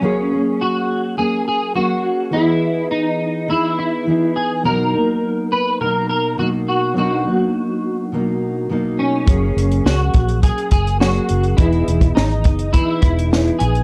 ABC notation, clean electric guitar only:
X:1
M:4/4
L:1/8
Q:1/4=104
K:B
V:1 name="Clean electric guitar"
C2 F2 G G F2 | E2 D2 E E2 G | A3 B A A F F | F6 z C- |
C2 F2 G G F2 | E2 D2 E E2 G |]